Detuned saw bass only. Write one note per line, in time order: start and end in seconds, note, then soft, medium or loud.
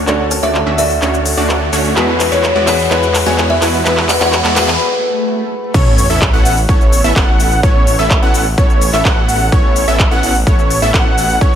0.07 0.41 D2 loud
0.43 0.64 D2 medium
0.67 1.00 D2 loud
1.02 1.35 D2 loud
1.37 1.70 D2 loud
1.73 1.94 D2 loud
1.96 2.30 E2 loud
2.32 2.53 E2 loud
2.56 2.89 E2 loud
2.91 3.24 E2 loud
3.26 3.59 E2 loud
3.62 3.83 E2 loud
4.21 4.42 E2 loud
4.44 4.78 E2 loud
5.74 6.07 A1 loud
6.10 6.31 A1 medium
6.33 6.67 A1 loud
7.04 7.14 A1 medium
7.99 8.20 A1 medium
8.22 8.56 A1 loud
8.93 9.03 A1 medium
9.88 10.09 A1 medium
10.11 10.45 A1 loud
10.82 10.92 A1 loud